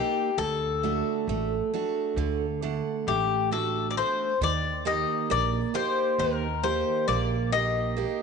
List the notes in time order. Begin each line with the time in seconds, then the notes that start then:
Already playing: A#3 D#4 G4
0.38 D2 D3 A4
0.83 A3 D4 F#4
1.27 A1 A3
1.74 A3 D4 F#4
2.16 D2 D3
2.62 A3 D4 F#5
3.07 A1 A3 G4
3.51 A3 D4 F#4 A4
3.91 D5
3.97 A3 D4 F#4 C5
4.41 D#2 D#3 D5
4.85 A#3 D#4 G4 D#5
5.30 A#1 A#3 D5
5.74 A#3 D#4 G4 C5
6.18 D#2 D#3 A#4
6.63 A#3 D#4 G4 C5
7.08 A#1 A#3 D5
7.53 A#3 D#4 G4 D#5
7.97 A#3 D#4 G4